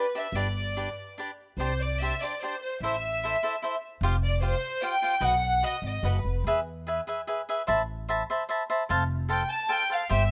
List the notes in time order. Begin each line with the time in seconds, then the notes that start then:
Already playing: B4
0.15 D4 G4 B4 D5 E5
0.32 G1 D4 G4 B4 D5
0.77 D4 G4 B4 D5
1.18 D4 G4 B4 D5
1.57 C2 D4 G4 C5
1.61 D5
1.79 D5
1.99 D4 G4 C5 D5 E5
2.21 D4 G4 C5 D5
2.40 D4 G4 C5
2.45 D5
2.61 C5
2.80 A1 E4 A4 C5 E5
3.23 E4 A4 C5 E5
3.43 E4 A4 C5 E5
3.62 E4 A4 C5 E5
4.01 F1 F4 G4 C5 F5
4.24 D5
4.42 F4 G4 C5 F5
4.82 F4 G4 C5 F5 G5
5.02 F4 G4 C5 F5
5.21 B1 F#4 B4 D#5 F#5
5.63 F#4 B4 D#5 F#5
5.82 G#1 D#5
6.03 F#1 F#4 B4 D#5 F#5
6.24 F1
6.44 E2 G#4 B4 E5 G#5
6.87 G#4 B4 E5 G#5
7.07 G#4 B4 E5 G#5
7.27 G#4 B4 E5 G#5
7.49 G#4 B4 E5 G#5
7.67 A1 C5 E5 A5 B5
8.09 C5 E5 A5 B5
8.30 C5 E5 A5 B5
8.49 C5 E5 A5 B5
8.70 C5 E5 A5 B5
8.89 F1 A4 C5 F5 A5
9.29 A4 C5 F5 G5 A5
9.50 A5
9.69 A4 C5 F5 G5 A5
9.90 A4 C5 F5 A5
10.09 G1 G4 C5 E5 G5